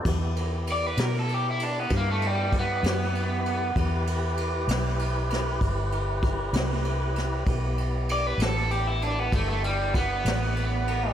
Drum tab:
CC |x-----------|------------|------------|
RD |-xxxxxxxxxxx|xxxxxxxxxxxx|xxxxxxxxxxxx|
SD |---o-----o--|---o-o---o-o|---o-----o--|
BD |o-----o-o---|o-----o-o---|o-----o-o---|